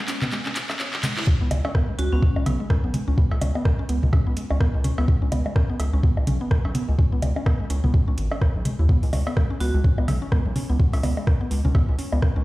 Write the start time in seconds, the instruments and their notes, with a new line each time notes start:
Already playing: riser
0.08 analog synth bass C#2, synth arpeggio sound C#4, clap, closed hi-hat, maracas
0.22 analog synth bass C#2, synth arpeggio sound B3, clap, mid tom, maracas
0.32 synth arpeggio sound G#3, clap, reverse cymbal, maracas
0.45 analog synth bass C#2, synth arpeggio sound C#4, clap, maracas
0.56 clap, closed hi-hat, maracas
0.70 analog synth bass C#2, synth arpeggio sound C#4, clap, cowbell, maracas
0.79 synth arpeggio sound C#5, clap, maracas
0.93 analog synth bass C#2, clap, maracas
1.03 synth arpeggio sound G#3, clap, closed hi-hat, high tom, maracas
1.17 analog synth bass C#2, synth arpeggio sound E4, clap, maracas
1.27 synth arpeggio sound C#4, kick
1.41 analog synth bass C#2, synth arpeggio sound B3
1.51 analog synth bass C#2, synth arpeggio sound G#3, closed hi-hat, high tom, high bongo
1.65 synth arpeggio sound C#4, cowbell, high bongo
1.75 synth arpeggio sound B3, kick, cross-stick
1.89 synth arpeggio sound G#3
1.99 analog synth bass C#2, synth arpeggio sound C#4, vibraphone F#4, closed hi-hat
2.12 analog synth bass C#2, synth arpeggio sound B3, vibraphone C#4
2.22 synth arpeggio sound G#3, vibraphone C#4, kick
2.36 analog synth bass C#2, synth arpeggio sound C#4, high bongo
2.46 analog synth bass B1, synth arpeggio sound B3, closed hi-hat, mid tom, cowbell
2.60 synth arpeggio sound G#3
2.70 analog synth bass C#2, synth arpeggio sound C#4, kick, cross-stick
2.84 analog synth bass B1, synth arpeggio sound B3
2.94 synth arpeggio sound G#3, closed hi-hat, mid tom
3.08 analog synth bass C#2, synth arpeggio sound C#4
3.18 synth arpeggio sound B3, kick
3.31 analog synth bass C#2, synth arpeggio sound G#3, cowbell
3.41 analog synth bass C#2, synth arpeggio sound C#4, closed hi-hat, high tom, high bongo
3.55 synth arpeggio sound B3, high bongo
3.65 synth arpeggio sound G#3, kick, cross-stick
3.79 synth arpeggio sound C#4
3.89 analog synth bass C#2, synth arpeggio sound B3, closed hi-hat
4.03 analog synth bass C#2, synth arpeggio sound G#3, mid tom
4.13 synth arpeggio sound C#4, kick, cowbell
4.27 analog synth bass C#2, synth arpeggio sound B3
4.37 synth arpeggio sound G#3, closed hi-hat
4.50 analog synth bass C#2, synth arpeggio sound C#4, high bongo
4.60 synth arpeggio sound B3, kick, cross-stick
4.74 analog synth bass C#2, synth arpeggio sound G#3
4.84 synth arpeggio sound C#4, closed hi-hat, high tom
4.98 analog synth bass C#2, synth arpeggio sound B3, cowbell
5.08 synth arpeggio sound G#3, kick
5.22 analog synth bass C#2, synth arpeggio sound C#4
5.32 analog synth bass C#2, synth arpeggio sound B3, closed hi-hat, high tom, high bongo
5.46 synth arpeggio sound G#3, high bongo
5.56 synth arpeggio sound C#4, kick, cross-stick
5.70 synth arpeggio sound B3
5.80 analog synth bass C#2, synth arpeggio sound G#3, closed hi-hat, cowbell
5.93 analog synth bass C#2, synth arpeggio sound C#4
6.03 synth arpeggio sound B3, kick
6.17 analog synth bass C#2, synth arpeggio sound G#3, high bongo
6.27 analog synth bass B1, synth arpeggio sound C#4, closed hi-hat, mid tom
6.41 synth arpeggio sound B3
6.51 analog synth bass C#2, synth arpeggio sound G#3, kick, cross-stick
6.65 analog synth bass B1, synth arpeggio sound C#4, cowbell
6.75 synth arpeggio sound B3, closed hi-hat, mid tom
6.89 analog synth bass C#2, synth arpeggio sound G#3
6.99 synth arpeggio sound C#4, kick
7.12 analog synth bass C#2, synth arpeggio sound B3
7.22 analog synth bass C#2, synth arpeggio sound G#3, closed hi-hat, high tom, high bongo
7.36 synth arpeggio sound C#4, high bongo
7.46 synth arpeggio sound B3, kick, cross-stick, cowbell
7.60 synth arpeggio sound G#3
7.70 analog synth bass C#2, synth arpeggio sound C#4, closed hi-hat
7.84 analog synth bass C#2, synth arpeggio sound B3, mid tom
7.94 synth arpeggio sound G#3, kick
8.08 analog synth bass C#2, synth arpeggio sound C#4
8.18 analog synth bass G#1, closed hi-hat
8.31 synth arpeggio sound C#4, cowbell, high bongo
8.41 synth arpeggio sound C#5, kick, cross-stick
8.55 analog synth bass B1
8.65 synth arpeggio sound G#3, closed hi-hat, high tom
8.79 analog synth bass D#2, synth arpeggio sound E4
8.89 synth arpeggio sound B3, kick
9.03 analog synth bass C#2, synth arpeggio sound G#3, open hi-hat
9.13 analog synth bass C#2, synth arpeggio sound C#4, open hi-hat, high tom, high bongo
9.27 synth arpeggio sound B3, cowbell, high bongo
9.37 synth arpeggio sound G#3, kick, cross-stick
9.50 synth arpeggio sound C#4
9.60 analog synth bass C#2, synth arpeggio sound B3, vibraphone F#4, open hi-hat
9.74 analog synth bass C#2, synth arpeggio sound G#3
9.84 synth arpeggio sound C#4, kick
9.98 analog synth bass C#2, synth arpeggio sound B3, high bongo
10.08 analog synth bass B1, synth arpeggio sound G#3, open hi-hat, mid tom, cowbell
10.22 synth arpeggio sound C#4
10.32 analog synth bass C#2, synth arpeggio sound B3, kick, cross-stick
10.46 analog synth bass B1, synth arpeggio sound G#3
10.56 synth arpeggio sound C#4, open hi-hat, mid tom
10.70 analog synth bass C#2, synth arpeggio sound B3
10.79 synth arpeggio sound G#3, kick
10.93 analog synth bass C#2, synth arpeggio sound C#4, open hi-hat, cowbell
11.03 analog synth bass C#2, synth arpeggio sound B3, open hi-hat, high tom, high bongo
11.17 synth arpeggio sound G#3, high bongo
11.27 synth arpeggio sound C#4, kick, cross-stick
11.41 synth arpeggio sound B3
11.51 analog synth bass C#2, synth arpeggio sound G#3, open hi-hat
11.65 analog synth bass C#2, synth arpeggio sound C#4, mid tom
11.75 synth arpeggio sound B3, kick, cowbell
11.89 analog synth bass C#2, synth arpeggio sound G#3
11.99 synth arpeggio sound C#4, open hi-hat
12.12 analog synth bass C#2, synth arpeggio sound B3, high bongo
12.22 synth arpeggio sound G#3, kick, cross-stick
12.36 analog synth bass C#2, synth arpeggio sound C#4